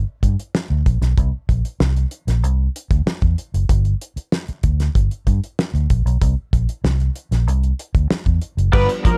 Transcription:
0.23 fingered electric bass G2, kick, closed hi-hat
0.39 closed hi-hat
0.55 snare
0.70 fingered electric bass D2
0.86 fingered electric bass A#1, kick, closed hi-hat
1.01 fingered electric bass B1, snare, closed hi-hat
1.18 fingered electric bass C2, kick, closed hi-hat
1.49 fingered electric bass A#1, kick, closed hi-hat
1.65 closed hi-hat
1.80 fingered electric bass C2, snare
1.96 closed hi-hat
2.11 closed hi-hat
2.27 fingered electric bass A#1, snare, closed hi-hat
2.43 fingered electric bass C2, closed hi-hat
2.76 closed hi-hat
2.91 fingered electric bass D2, kick, closed hi-hat
3.06 muted fingered electric bass stroke, snare
3.22 fingered electric bass E2, kick, closed hi-hat
3.38 closed hi-hat
3.54 fingered electric bass F#1, closed hi-hat
3.69 fingered electric bass G1, kick, closed hi-hat
3.85 closed hi-hat
4.01 closed hi-hat
4.16 muted fingered electric bass stroke, closed hi-hat
4.32 snare
4.48 muted fingered electric bass stroke, closed hi-hat
4.63 fingered electric bass D2, kick, closed hi-hat
4.80 snare, closed hi-hat
4.95 fingered electric bass G1, kick, closed hi-hat
5.11 closed hi-hat
5.27 fingered electric bass G2, kick, closed hi-hat
5.44 closed hi-hat
5.59 snare
5.74 fingered electric bass D2, closed hi-hat
5.90 fingered electric bass A#1, kick, closed hi-hat
6.06 fingered electric bass B1, closed hi-hat
6.21 fingered electric bass C2, kick, closed hi-hat
6.53 fingered electric bass A#1, kick, closed hi-hat
6.69 closed hi-hat
6.84 fingered electric bass C2, snare
7.00 closed hi-hat
7.16 closed hi-hat
7.31 fingered electric bass A#1, snare, closed hi-hat
7.47 fingered electric bass C2, closed hi-hat
7.63 closed hi-hat
7.79 closed hi-hat
7.95 fingered electric bass D2, kick, closed hi-hat
8.11 muted fingered electric bass stroke, snare
8.26 fingered electric bass E2, kick, closed hi-hat
8.42 closed hi-hat
8.57 fingered electric bass F#1, closed hi-hat
8.72 fingered electric bass G1, tonewheel organ F3 G3 B3 D4, clean electric guitar G3 B3 F4 A#4 D5, analog synth lead B4, kick, crash
8.88 muted clean electric guitar stroke, closed hi-hat
9.03 clean electric guitar F3, analog synth lead A#4, muted clean electric guitar stroke, muted fingered electric bass stroke, kick, closed hi-hat

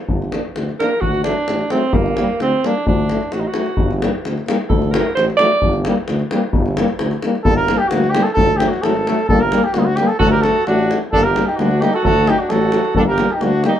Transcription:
0.08 tuba G1, davul low
0.22 davul high
0.32 euphonium A#3, trombone D4, davul high
0.56 tuba D2, davul high
0.69 davul high
0.80 euphonium A#3, trombone D4, alto saxophone A#4, davul high
1.01 tuba D2, alto saxophone F#4, davul low
1.14 davul high
1.24 euphonium F#3, trombone A3, alto saxophone D4, davul high
1.48 tuba A1, davul high
1.59 davul high
1.70 euphonium F#3, trombone A3, alto saxophone C4, davul high
1.93 tuba G1, alto saxophone A#3, davul low
2.06 davul high
2.17 euphonium G3, trombone A#3, davul high
2.40 tuba D2, alto saxophone C4, davul high
2.64 euphonium G3, trombone A#3, alto saxophone D4, davul high
2.86 tuba D2, alto saxophone D4, davul low
3.00 davul high
3.09 euphonium F#3, trombone A3, davul high
3.21 davul high
3.32 tuba A1, alto saxophone F#4, davul high
3.40 alto saxophone D#4
3.48 alto saxophone F#4
3.54 euphonium F#3, trombone A3, davul high
3.66 davul high
3.77 tuba G1, davul low
3.91 davul high
4.01 euphonium G3, trombone A#3, davul high
4.25 tuba D2, davul high
4.38 davul high
4.47 euphonium G3, trombone A#3, davul high
4.69 tuba D2, alto saxophone A4, davul low
4.82 davul high
4.92 euphonium F#3, alto saxophone A#4, davul high
4.96 trombone A3
5.15 tuba A1, alto saxophone C5, davul high
5.30 davul high
5.37 euphonium F#3, alto saxophone D5, davul high
5.41 trombone A3
5.62 tuba G1, davul low
5.73 davul high
5.85 euphonium G3, trombone A#3, davul high
6.08 tuba D2, davul high
6.19 davul high
6.31 euphonium G3, trombone A#3, davul high
6.53 tuba G1, davul low
6.66 davul high
6.77 euphonium G3, trombone A#3, davul high
6.88 davul high
6.99 tuba D2, davul high
7.11 davul high
7.22 euphonium G3, trombone A#3, davul high
7.35 davul high
7.44 tuba G1, euphonium G3, trombone A#3, cornet A4, davul low
7.57 cornet A#4
7.68 euphonium G3, trombone A#3, davul high
7.78 cornet G4, davul high
7.88 tuba D2, cornet F#4, davul high
7.93 euphonium G3, trombone A#3
8.04 davul high
8.10 cornet G4
8.15 euphonium G3, trombone A#3, davul high
8.23 cornet A4, davul high
8.33 cornet A4, davul low
8.38 tuba D2, euphonium F#3, trombone A3
8.57 cornet G4, davul high
8.61 euphonium F#3, trombone A3
8.68 cornet F#4
8.74 davul high
8.83 tuba G#1, euphonium F#3, trombone A3, cornet A4, davul high
8.94 davul high
9.07 euphonium F#3, trombone A3, davul high
9.19 davul high
9.28 tuba G1, euphonium G3, trombone A#3, cornet A4, davul low
9.41 cornet A#4
9.52 euphonium G3, trombone A#3, davul high
9.64 cornet G4, davul high
9.74 tuba D2, euphonium G3, trombone A#3, cornet F#4, davul high
9.79 cornet D#4
9.85 cornet F#4
9.96 euphonium G3, cornet G4, davul high
10.00 trombone A#3
10.08 cornet A4, davul high
10.19 tuba D2, alto saxophone F#4, cornet A4, davul low
10.24 euphonium F#3, trombone A3
10.31 alto saxophone G4, cornet A#4, davul high
10.42 alto saxophone F#4, cornet A4, davul high
10.46 euphonium F#3, trombone A3
10.56 davul high
10.66 tuba A1, euphonium F#3, trombone A3, alto saxophone D4, cornet F#4, davul high
10.79 davul high
10.91 euphonium F#3, trombone A3, davul high
11.03 davul high
11.12 tuba G1, euphonium G3, trombone A#3, alto saxophone D4, cornet A4, davul low
11.23 alto saxophone G4, cornet A#4
11.36 euphonium G3, trombone A#3, davul high
11.47 alto saxophone D#4, cornet G4, davul high
11.57 tuba D2, euphonium G3, trombone A#3, cornet F#4, davul high
11.61 alto saxophone D4
11.71 davul high
11.80 euphonium G3, trombone A#3, alto saxophone D#4, cornet G4, davul high
11.93 alto saxophone F#4, cornet A4, davul high
12.04 tuba D2, euphonium F#3, trombone A3, alto saxophone F#4, cornet A4, davul low
12.26 euphonium F#3, trombone A3, alto saxophone D#4, cornet G4, davul high
12.39 alto saxophone D4, cornet F#4, davul high
12.49 tuba A1, euphonium F#3, trombone A3, alto saxophone F#4, cornet A4, davul high
12.62 davul high
12.72 euphonium F#3, trombone A3, davul high
12.85 davul high
12.94 tuba G1, euphonium G3, trombone A#3, cornet A4, davul low
12.99 alto saxophone D4
13.08 alto saxophone G4, cornet A#4
13.17 euphonium G3, trombone A#3, davul high
13.30 cornet G4, davul high
13.34 alto saxophone D#4
13.40 tuba D2, euphonium G3, trombone A#3, cornet F#4, davul high
13.46 alto saxophone D4
13.53 davul high
13.63 euphonium G3, trombone A#3, cornet G4, davul high
13.68 alto saxophone D#4
13.76 davul high

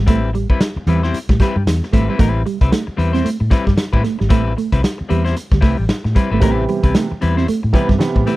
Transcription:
0.06 fingered electric bass A1, clean electric guitar G3 A3 C4 E4 B4, kick, closed hi-hat
0.24 muted clean electric guitar stroke
0.33 clean electric guitar G3, muted clean electric guitar stroke, closed hi-hat
0.50 clean electric guitar G3 C4 E4 B4, kick
0.60 muted clean electric guitar stroke, snare, closed hi-hat
0.76 muted fingered electric bass stroke, muted clean electric guitar stroke
0.87 fingered electric bass E2, clean electric guitar E3 G3 C4 E4 B4, closed hi-hat
1.03 clean electric guitar G3 C4 E4 C5, snare
1.14 muted fingered electric bass stroke, muted clean electric guitar stroke, closed hi-hat
1.29 fingered electric bass A2, clean electric guitar G3, muted clean electric guitar stroke, kick, snare
1.40 clean electric guitar G3 C4 E4 B4, kick, snare, closed hi-hat
1.56 fingered electric bass G2, muted clean electric guitar stroke
1.66 fingered electric bass E2, muted clean electric guitar stroke, snare, closed hi-hat
1.83 muted clean electric guitar stroke, snare
1.93 fingered electric bass G#1, clean electric guitar G3 A3 C4 E4 B4, kick, closed hi-hat
2.09 clean electric guitar G3 C4 E4 B4
2.18 fingered electric bass A1, clean electric guitar G3 A3 C4 E4 B4, kick, closed hi-hat
2.35 muted clean electric guitar stroke
2.46 clean electric guitar G3, muted clean electric guitar stroke, closed hi-hat
2.61 fingered electric bass C2, clean electric guitar G3 C4 E4 B4, kick, closed hi-hat
2.72 clean electric guitar A3, muted clean electric guitar stroke, snare, closed hi-hat
2.87 muted clean electric guitar stroke, muted fingered electric bass stroke
2.97 fingered electric bass E2, clean electric guitar G3 C4 E4 B4, muted clean electric guitar stroke, closed hi-hat
3.13 clean electric guitar G3 C4 E4 C5, snare, closed hi-hat
3.24 clean electric guitar A3, muted fingered electric bass stroke, closed hi-hat
3.40 fingered electric bass A2, muted clean electric guitar stroke
3.50 clean electric guitar G3 C4 E4 B4, muted clean electric guitar stroke, kick, snare, closed hi-hat
3.66 fingered electric bass G2, clean electric guitar G3, muted clean electric guitar stroke, kick, snare
3.77 muted clean electric guitar stroke, snare, closed hi-hat
3.93 fingered electric bass A2, clean electric guitar G3 C4 E4 B4, kick
4.04 clean electric guitar A3, muted clean electric guitar stroke, snare, closed hi-hat
4.19 fingered electric bass G#1, clean electric guitar G3, muted clean electric guitar stroke, snare
4.29 fingered electric bass A1, clean electric guitar G3 A3 C4 E4 B4, kick, closed hi-hat
4.47 muted clean electric guitar stroke
4.57 clean electric guitar A3, muted clean electric guitar stroke, closed hi-hat
4.72 fingered electric bass C2, clean electric guitar G3 C4 E4 B4, kick, closed hi-hat
4.82 muted clean electric guitar stroke, snare, closed hi-hat
4.98 muted clean electric guitar stroke, muted fingered electric bass stroke
5.09 fingered electric bass E2, clean electric guitar G3 C4 E4 B4, closed hi-hat
5.25 clean electric guitar G3 C4 E4 C5, snare, closed hi-hat
5.36 muted clean electric guitar stroke, closed hi-hat
5.52 fingered electric bass D2, clean electric guitar G3, muted clean electric guitar stroke, kick, snare
5.61 fingered electric bass C2, clean electric guitar G3 A3 C4 E4 B4, kick, snare, open hi-hat
5.78 fingered electric bass A1, muted clean electric guitar stroke
5.89 muted clean electric guitar stroke, snare, closed hi-hat
6.04 fingered electric bass A2, muted clean electric guitar stroke, snare
6.15 clean electric guitar G3 C4 E4 B4, kick, closed hi-hat
6.31 fingered electric bass G#1, clean electric guitar G3 A3 C4 E4 B4
6.40 fingered electric bass A1, upright piano C3 E3 G3 B3, clean electric guitar G3 A3 C4 E4 B4, kick, closed hi-hat
6.60 muted clean electric guitar stroke
6.68 clean electric guitar G3, muted clean electric guitar stroke, closed hi-hat
6.83 fingered electric bass C2, clean electric guitar G3 C4 E4 B4, kick, closed hi-hat
6.95 clean electric guitar A3, muted clean electric guitar stroke, snare, closed hi-hat
7.11 muted fingered electric bass stroke, muted clean electric guitar stroke
7.21 fingered electric bass E2, clean electric guitar G3 C4 E4 B4, muted clean electric guitar stroke, closed hi-hat
7.37 clean electric guitar G3 C4 E4 C5, snare
7.48 clean electric guitar A3, muted clean electric guitar stroke, muted fingered electric bass stroke, closed hi-hat
7.63 fingered electric bass A2, muted clean electric guitar stroke
7.73 upright piano C3 E3 G3 B3, clean electric guitar G3 C4 E4 B4, muted clean electric guitar stroke, kick, snare, closed hi-hat
7.89 fingered electric bass G2, clean electric guitar G3, muted clean electric guitar stroke, kick, snare
7.98 upright piano C3 E3 G3 B3, muted clean electric guitar stroke, snare, closed hi-hat
8.16 fingered electric bass A2, muted clean electric guitar stroke, kick
8.26 clean electric guitar G3 A3 C4 E4 B4, snare, closed hi-hat

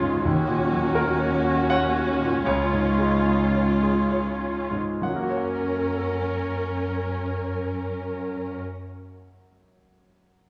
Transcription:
Already playing: grand piano C#2 G#2 G#3 F4 G#4 C#5, cello section C#2, viola section C#4 F4
0.02 grand piano G#2
0.25 cello section D#2, grand piano D#2, viola section C#4 F#4
0.48 grand piano A#2
0.72 grand piano F#3
0.94 grand piano F#4 A#4
1.20 grand piano C#5
1.44 grand piano F#4
1.70 grand piano C#5 F#5
1.94 grand piano F#4
2.22 grand piano A#2
2.46 grand piano C#2 C#5, cello section C#2, viola section F4
2.73 grand piano G#2
2.99 grand piano G#3
3.27 grand piano F4
3.55 grand piano C#5
3.83 grand piano G#4
4.11 grand piano C#5
4.41 grand piano F4
4.71 grand piano G#2
5.02 grand piano F#2 F#5, cello section F#2, viola section C#4 A#4
5.08 grand piano F#3
5.15 grand piano A#3
5.23 grand piano F#4
5.30 grand piano C#5
5.37 grand piano F#5

